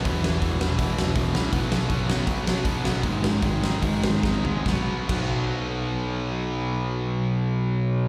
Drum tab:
CC |--------|--------|--------|--x-----|
HH |o-o-o-o-|o-o-o-o-|o-o-o---|--------|
SD |-o-o-o-o|-o-o-o-o|-o-o-oo-|o-------|
FT |--------|--------|-------o|--------|
BD |o-o-o-o-|o-o-o-o-|o-o-o-o-|o-o-----|

CC |--------|
HH |--------|
SD |--------|
FT |--------|
BD |--------|